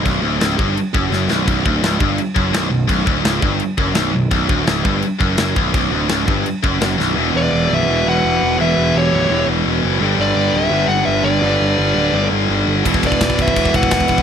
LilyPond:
<<
  \new Staff \with { instrumentName = "Lead electric guitar" } { \time 4/4 \key b \minor \tempo 4 = 169 r1 | r1 | r1 | r1 |
r1 | r8 d''4 e''4 fis''4. | e''4 cis''4. r4. | r8 d''4 e''4 fis''8 e''8 d''8~ |
d''2~ d''8 r4. | r8 d''4 e''4 fis''4. | }
  \new Staff \with { instrumentName = "Lead electric guitar" } { \time 4/4 \key b \minor r1 | r1 | r1 | r1 |
r1 | r8 b'4 b'4 b'4. | b'4 g'4. r4. | r8 b'4 b'4 d''8 b'8 b'8~ |
b'2~ b'8 r4. | r8 b'4 b'4 b'4. | }
  \new Staff \with { instrumentName = "Distorted electric guitar" } { \clef bass \time 4/4 \key b \minor b,,8 d,8 cis,8 g,8 r8 fis,8 fis,8 b,,8 | b,,8 d,8 cis,8 g,8 r8 fis,8 b,,8 b,,8 | b,,8 d,8 cis,8 g,8 r8 fis,8 b,,8 b,,8 | b,,8 d,8 cis,8 g,8 r8 fis,8 fis,8 b,,8 |
b,,8 d,8 cis,8 g,8 r8 fis,8 fis,8 b,,8 | <e, b, e>2 <e, b, e>2 | <e, b, e>2 <e, b, e>2 | <g, d g>2 <g, d g>2 |
<g, d g>2 <g, d g>2 | <e, b, e>2 <e, b, e>2 | }
  \new Staff \with { instrumentName = "Distorted electric guitar" } { \clef bass \time 4/4 \key b \minor b,,8 d,8 cis,8 g,8 r8 fis,8 fis,8 b,,8 | b,,8 d,8 cis,8 g,8 r8 fis,8 b,,8 b,,8 | b,,8 d,8 cis,8 g,8 r8 fis,8 b,,8 b,,8 | b,,8 d,8 cis,8 g,8 r8 fis,8 fis,8 b,,8 |
b,,8 d,8 cis,8 g,8 r8 fis,8 fis,8 b,,8 | <e, b, e>1 | <e, b, e>1 | <g, d g>1 |
<g, d g>1 | <e, b, e>1 | }
  \new Staff \with { instrumentName = "Picked electric bass" } { \clef bass \time 4/4 \key b \minor b,,,8 d,,8 cis,,8 g,,8 r8 fis,,8 fis,,8 b,,,8 | b,,,8 d,,8 cis,,8 g,,8 r8 fis,,8 b,,,8 b,,,8 | b,,,8 d,,8 cis,,8 g,,8 r8 fis,,8 b,,,8 b,,,8 | b,,,8 d,,8 cis,,8 g,,8 r8 fis,,8 fis,,8 b,,,8 |
b,,,8 d,,8 cis,,8 g,,8 r8 fis,,8 fis,,8 b,,,8 | e,,8 e,,8 e,,8 b,,,8 e,,8 e,,8 e,,8 e,,8 | e,,8 e,,8 e,,8 b,,,8 e,,8 e,,8 e,,8 fis,,8 | g,,8 g,,8 g,,8 d,,8 g,,8 g,,8 g,,8 g,,8 |
g,,8 g,,8 g,,8 d,,8 g,,8 g,,8 g,,8 g,,8 | e,,8 e,,8 e,,8 b,,,8 e,,8 e,,8 e,,8 e,,8 | }
  \new DrumStaff \with { instrumentName = "Drums" } \drummode { \time 4/4 <cymc bd>4 <cymc sn>8 bd8 cymc8 bd8 sn8 sn8 | <cymc bd>8 bd8 <cymc sn>8 bd8 cymc8 bd8 <cymc sn>4 | <cymc bd>8 bd8 <cymc sn>8 bd8 cymc8 bd8 <cymc sn>4 | <cymc bd>8 bd8 <cymc sn>8 bd8 cymc8 bd8 <cymc sn>8 bd8 |
<cymc bd>4 <cymc sn>8 bd8 cymc8 bd8 <cymc sn>8 sn8 | r4 r4 r4 r4 | r4 r4 r4 r4 | r4 r4 r4 r4 |
r4 r4 r4 r4 | <cymc bd>16 bd16 <cymc bd>16 bd16 <cymc bd sn>16 bd16 <cymc bd>16 bd16 <cymc bd>16 bd16 <cymc bd>16 bd16 <cymc bd sn>16 bd16 <cymc bd>16 bd16 | }
>>